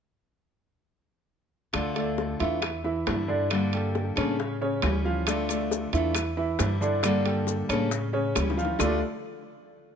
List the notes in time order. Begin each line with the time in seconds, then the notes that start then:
1.73 D2 D3 A3 D4 F4 A4 D5, high bongo, high timbale, claves
1.95 A3 A4 D5, high bongo, high timbale
2.18 high bongo, low timbale
2.39 E2 E3 A3 D4 E4 F4 E5, high timbale
2.62 muted steel-string acoustic guitar stroke, high bongo, high timbale, claves
2.84 E3 E4 E5, high bongo
3.06 G2 D3 G3 D4 E4, high bongo, low bongo, high timbale, low timbale
3.28 D3 D4 D5, high bongo
3.50 D3 G3 A#3 D4 A4 D5, high bongo, high timbale, claves
3.73 G3 G4 A4, high timbale
3.95 high bongo, low timbale
4.16 A2 C#3 G3 A#3 C#4 D4 A4 C#5, high bongo, high timbale, claves
4.39 muted steel-string acoustic guitar stroke, high bongo
4.61 C#3 C#4 C#5, high bongo
4.82 D2 E3 G3 C#4 E4, high bongo, low bongo, high timbale, low timbale, claves
5.04 F3 F4 F5, high bongo
5.26 D3 A3 D4 F4 A4 D5, high bongo, high timbale, claves, maracas
5.49 A3 A4 D5, high bongo, high timbale, maracas
5.71 high bongo, low timbale, maracas
5.93 E2 E3 A3 D4 E4 F4 E5, high timbale, maracas
6.15 muted steel-string acoustic guitar stroke, high bongo, high timbale, claves, maracas
6.37 E3 E4 E5, high bongo
6.59 G2 D3 G3 D4 E4, high bongo, low bongo, high timbale, low timbale, maracas
6.81 D3 D4 D5, high bongo, maracas
7.03 D3 G3 A#3 D4 A4 D5, high bongo, high timbale, claves, maracas
7.25 G3 G4 A4, high timbale
7.47 high bongo, low timbale, maracas
7.69 A2 C#3 G3 A#3 C#4 D4 A4 C#5, high bongo, high timbale, claves, maracas
7.91 muted steel-string acoustic guitar stroke, high bongo, maracas
8.13 C#3 C#4 C#5, high bongo
8.35 D2 E3 G3 C#4 E4, high bongo, high timbale, low timbale, claves, maracas
8.50 low bongo
8.57 F3 F4 F5, maracas
8.65 low bongo
8.79 D2 D3 A3 D4 F4 A4 D5, low bongo, low timbale, claves, maracas